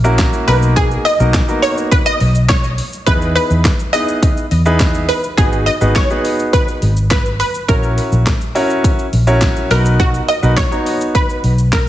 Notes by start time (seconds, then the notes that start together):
Already playing: A#1
0.04 A#3 C#4 E4 F#4 A#4, shaker
0.19 kick, snare, clap, closed hi-hat, shaker
0.33 shaker
0.48 B1 A#3 B3 D#4 F#4 A#4 B4, open hi-hat, shaker
0.63 shaker
0.76 G#4, kick, closed hi-hat, shaker
0.91 shaker
1.05 D#5, open hi-hat, shaker
1.20 B1 A#3 B3 D#4 F#4 A#4, shaker
1.34 kick, snare, clap, closed hi-hat, shaker
1.48 A#3 B3 D#4 F#4 A#4, shaker
1.62 C#5, open hi-hat, shaker
1.78 shaker
1.91 B4, kick, closed hi-hat, shaker
2.06 D#5, shaker
2.20 B1, open hi-hat, shaker
2.35 shaker
2.49 C#5, kick, snare, clap, closed hi-hat, shaker
2.64 shaker
2.78 open hi-hat, shaker
2.93 shaker
3.07 E2 B3 D#4 E4 G#4 B4, kick, closed hi-hat, shaker
3.22 shaker
3.36 B4, open hi-hat, shaker
3.50 E2, shaker
3.65 kick, snare, clap, closed hi-hat, shaker
3.79 shaker
3.93 B3 D#4 E4 G#4 B4 D#5, open hi-hat, shaker
4.08 shaker
4.23 kick, closed hi-hat, shaker
4.37 shaker
4.51 E2, open hi-hat, shaker
4.66 B3 D#4 E4 G#4 B4, shaker
4.80 kick, snare, clap, closed hi-hat, shaker
4.95 shaker
5.09 B4, open hi-hat, shaker
5.24 shaker
5.37 G#1 B3 D#4 F#4 G#4 B4, kick, closed hi-hat, shaker
5.52 shaker
5.66 D#5, open hi-hat, shaker
5.81 G#1 B3 D#4 F#4 G#4 B4, shaker
5.95 C#5, kick, snare, clap, closed hi-hat, shaker
6.10 B3 D#4 F#4 G#4 B4, shaker
6.25 open hi-hat, shaker
6.39 shaker
6.53 B4, kick, closed hi-hat, shaker
6.68 shaker
6.82 G#1, open hi-hat, shaker
6.97 shaker
7.11 B4, kick, snare, clap, closed hi-hat, shaker
7.25 shaker
7.40 B4, open hi-hat, shaker
7.55 shaker
7.68 A#1 C#4 E4 F#4 A#4 C#5, kick, closed hi-hat, shaker
7.83 shaker
7.98 open hi-hat, shaker
8.12 A#1, shaker
8.27 kick, snare, clap, closed hi-hat, shaker
8.41 shaker
8.55 C#4 E4 F#4 A#4 C#5, open hi-hat, shaker
8.70 shaker
8.84 kick, closed hi-hat, shaker
8.99 shaker
9.13 A#1, open hi-hat, shaker
9.27 C#4 E4 F#4 A#4 C#5, shaker
9.42 kick, snare, clap, closed hi-hat, shaker
9.56 shaker
9.71 B1 B3 D#4 F#4 A#4 B4, open hi-hat, shaker
9.85 shaker
10.00 F#4, kick, closed hi-hat, shaker
10.14 shaker
10.28 D#5, open hi-hat, shaker
10.42 B1 B3 D#4 F#4 A#4 B4, shaker
10.57 C#5, kick, snare, clap, closed hi-hat, shaker
10.71 B3 D#4 F#4 C#5 A#5, shaker
10.86 open hi-hat, shaker
11.01 shaker
11.15 B4, kick, closed hi-hat, shaker
11.30 shaker
11.44 B1, open hi-hat, shaker
11.58 shaker
11.73 A#4, kick, snare, clap, closed hi-hat, shaker